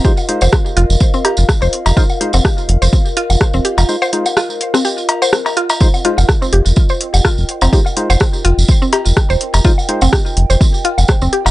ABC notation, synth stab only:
X:1
M:4/4
L:1/8
Q:"Swing 16ths" 1/4=125
K:Fm
V:1 name="Synth stab"
[A,EFc] [A,EFc] z6 | [A,EFc] [A,EFc] z6 | [A,EFc] [A,EFc] z6 | [A,EFc] [A,EFc] z6 |
[A,EFc] [A,EFc] z6 | [A,EFc] [A,EFc] z6 |]